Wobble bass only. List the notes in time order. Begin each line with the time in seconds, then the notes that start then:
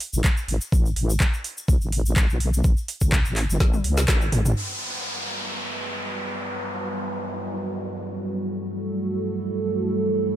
0.13 A1
0.48 A1
0.72 A1
0.96 A1
1.68 C#2
1.82 A1
2.30 B1
2.64 A1
3.01 C#2
3.25 A1
3.49 G1
3.60 A1
3.84 C#2
4.08 A1
4.32 A1